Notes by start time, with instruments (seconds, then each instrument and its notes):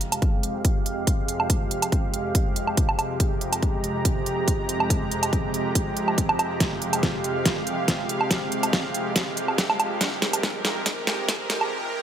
Already playing: supersaw synth F2 C3 G#3 G4 F5
0.01 closed hi-hat
0.12 closed hi-hat, low woodblock
0.22 kick, closed hi-hat
0.43 closed hi-hat
0.65 kick, closed hi-hat
0.86 closed hi-hat
1.07 kick, closed hi-hat
1.28 closed hi-hat
1.40 low woodblock
1.50 kick, closed hi-hat
1.71 closed hi-hat
1.82 closed hi-hat, low woodblock
1.92 kick, closed hi-hat
2.14 closed hi-hat
2.35 kick, closed hi-hat
2.56 closed hi-hat
2.67 low woodblock
2.77 kick, closed hi-hat
2.89 low woodblock
2.99 closed hi-hat, low woodblock
3.20 supersaw synth A#5, kick, closed hi-hat
3.41 closed hi-hat
3.53 closed hi-hat, low woodblock
3.63 kick, closed hi-hat
3.84 closed hi-hat
4.05 kick, closed hi-hat
4.26 closed hi-hat
4.48 kick, closed hi-hat
4.69 closed hi-hat
4.80 low woodblock
4.90 kick, closed hi-hat
5.12 closed hi-hat
5.23 closed hi-hat, low woodblock
5.33 kick, closed hi-hat
5.54 closed hi-hat
5.75 kick, closed hi-hat
5.97 closed hi-hat
6.08 low woodblock
6.18 kick, closed hi-hat
6.29 low woodblock
6.39 closed hi-hat, low woodblock
6.60 supersaw synth F5, kick, snare, closed hi-hat
6.82 closed hi-hat
6.93 closed hi-hat, low woodblock
7.03 kick, snare, closed hi-hat
7.24 closed hi-hat
7.46 kick, snare, closed hi-hat
7.67 closed hi-hat
7.88 kick, snare, closed hi-hat
8.09 closed hi-hat
8.21 low woodblock
8.31 kick, snare, closed hi-hat
8.52 closed hi-hat
8.63 closed hi-hat, low woodblock
8.73 kick, snare, closed hi-hat
8.94 closed hi-hat
9.16 kick, snare, closed hi-hat
9.37 closed hi-hat
9.48 low woodblock
9.58 kick, snare, closed hi-hat
9.70 low woodblock
9.80 closed hi-hat, low woodblock
10.01 supersaw synth A#4, kick, snare, closed hi-hat
10.22 snare, closed hi-hat
10.33 closed hi-hat, low woodblock
10.43 kick, snare, closed hi-hat
10.65 snare, closed hi-hat
10.86 kick, snare, closed hi-hat
11.07 snare, closed hi-hat
11.29 kick, snare, closed hi-hat
11.50 snare, closed hi-hat
11.61 low woodblock